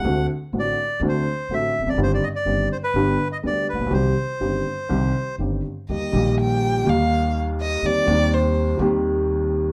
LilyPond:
<<
  \new Staff \with { instrumentName = "Violin" } { \time 4/4 \key c \minor \tempo 4 = 124 r1 | r1 | r1 | \key ees \major ees''4 g''4 f''4 r8 ees''8 |
d''4 c''4 r2 | }
  \new Staff \with { instrumentName = "Bandoneon" } { \time 4/4 \key c \minor fis''8 r8 d''4 c''4 e''8. d''16 | c''16 d''16 ees''16 d''8. c''16 b'4 ees''16 d''8 b'8 | c''2. r4 | \key ees \major r1 |
r1 | }
  \new Staff \with { instrumentName = "Upright piano" } { \clef bass \time 4/4 \key c \minor <d, d a c' fis'>8 r8 <a,, a, d a c' fis'>8 r8 <d, d a c' fis'>8 r8 <a,, a, d a c' fis'>8 r32 e,32 f,32 fis,32 | <g,, g, ees g c' g'>8 r8 <g,, g, ees g c' g'>8 r8 <g,, g, d g b g'>8 r8 <d, d g b g'>8 r32 a,,32 bes,,32 b,,32 | <c, c ees g c' g'>8 r8 <g,, g, ees g c' g'>8 r8 <c, c ees g c' g'>8 r8 <g,, g, ees g c' g'>8 r8 | \key ees \major <ees, ees g bes g'>8 <bes,, bes, ees g bes g'>4. <ees, ees g bes g'>2 |
<ees, ees g c' g'>8 <ees, ees g c' g'>4. <ees, ees g c' g'>2 | }
  \new Staff \with { instrumentName = "Upright bass" } { \clef bass \time 4/4 \key c \minor d,16. r8 r32 a,,16. r8 r32 d,16. r8 r32 a,,16. r16 e,,32 f,,32 fis,,32 | g,,16. r8 r32 g,,16. r8 r32 g,,16. r8 r32 d,16. r16 a,,32 bes,,32 b,,32 | c,16. r8 r32 g,,16. r8 r32 c,16. r8 r32 g,,16. r8 r32 | \key ees \major ees,16. r32 bes,,4~ bes,,16. r32 ees,4.~ ees,16. r32 |
ees,16. r32 ees,4~ ees,16. r32 ees,4.~ ees,16. r32 | }
>>